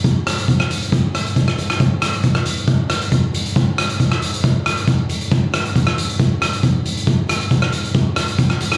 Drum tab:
HH |x-xxx-xxx-xxx-xx|x-xxx-xxx-xxx-xx|x-xxx-xxx-xxx-xx|x-xxx-xxx-xxx-xx|
SD |--r--r----r--r-r|--r--r----r-----|--r--r----r-----|--r--r----r-----|
BD |o---o---o---o---|o---o---o---o---|o---o---o---o---|o---o---o---o---|

HH |x-xxx-xxx-xxx-xx|
SD |--r--r----r--r-r|
BD |o---o---o---o---|